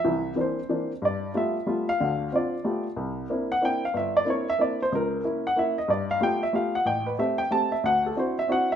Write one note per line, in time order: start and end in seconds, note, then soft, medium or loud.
0.00 0.36 E5 medium
0.05 0.33 C2 medium
0.05 0.33 E3 medium
0.36 0.58 E3 soft
0.36 0.58 A#3 soft
0.36 0.59 C4 soft
0.36 0.59 D4 medium
0.41 0.88 C5 medium
0.69 0.91 E3 soft
0.69 0.91 A#3 soft
0.69 0.91 C4 soft
0.69 0.91 D4 medium
1.02 1.30 G2 medium
1.02 1.34 D5 medium
1.34 1.56 G3 soft
1.34 1.56 A3 soft
1.34 1.56 B3 soft
1.34 1.56 F4 medium
1.34 1.85 E5 medium
1.66 1.88 G3 soft
1.66 1.88 A3 soft
1.66 1.88 B3 soft
1.66 1.89 F4 medium
1.89 2.30 F5 medium
2.00 2.28 D2 medium
2.00 2.28 D3 medium
2.32 2.54 C4 soft
2.32 2.54 D4 soft
2.32 2.54 F4 medium
2.32 2.83 D5 medium
2.64 2.86 A3 soft
2.64 2.86 B3 soft
2.64 2.86 F4 soft
2.64 2.86 G4 medium
2.96 3.24 C2 medium
3.30 3.51 A#3 soft
3.30 3.51 C4 soft
3.30 3.51 D4 soft
3.30 3.51 E4 medium
3.52 3.62 F#5 medium
3.61 3.83 A#3 soft
3.61 3.83 C4 soft
3.61 3.83 D4 soft
3.61 3.83 E4 medium
3.61 3.83 G5 medium
3.85 3.95 F5 medium
3.94 4.22 G1 medium
3.94 4.15 E5 medium
4.17 4.27 D5 medium
4.25 4.47 A#3 soft
4.25 4.48 C4 soft
4.25 4.47 D4 soft
4.25 4.48 E4 medium
4.30 4.48 C#5 medium
4.50 4.60 E5 medium
4.59 4.80 A#3 soft
4.59 4.80 C4 soft
4.59 4.80 D4 soft
4.59 4.81 E4 medium
4.59 4.80 D5 medium
4.82 4.93 C5 medium
4.92 5.20 C#2 medium
4.92 5.20 C#3 medium
4.92 5.23 A#4 medium
5.24 5.45 A#3 medium
5.24 5.45 C#4 soft
5.24 5.46 E4 medium
5.47 5.57 F#5 medium
5.56 5.78 A#3 soft
5.56 5.78 C#4 soft
5.56 5.78 E4 medium
5.56 5.77 E5 medium
5.78 5.89 D#5 medium
5.88 6.16 G2 medium
5.88 6.09 D5 medium
6.11 6.22 F5 medium
6.20 6.42 A3 soft
6.20 6.42 B3 soft
6.20 6.42 F4 soft
6.20 6.42 G4 medium
6.20 6.42 G5 medium
6.43 6.54 E5 medium
6.53 6.75 A3 soft
6.53 6.75 B3 soft
6.53 6.75 F4 soft
6.53 6.75 G4 medium
6.53 6.74 F5 medium
6.75 6.86 F#5 medium
6.85 7.13 A1 medium
6.85 7.06 G5 medium
7.07 7.18 B4 medium
7.18 7.40 A3 soft
7.18 7.40 C4 soft
7.18 7.40 G4 medium
7.18 7.38 E5 medium
7.38 7.50 G5 medium
7.51 7.72 A3 soft
7.51 7.72 C4 soft
7.51 7.73 G4 medium
7.51 7.71 A5 medium
7.72 7.83 E5 medium
7.84 8.11 D2 medium
7.84 8.04 F#5 medium
8.06 8.17 A4 medium
8.16 8.37 C4 soft
8.16 8.37 D4 soft
8.16 8.38 E4 soft
8.16 8.38 F#4 medium
8.16 8.37 C5 medium
8.39 8.49 E5 medium
8.48 8.70 C4 soft
8.48 8.70 D4 soft
8.48 8.70 E4 soft
8.48 8.70 F#4 medium
8.48 8.70 F#5 medium
8.72 8.76 E5 medium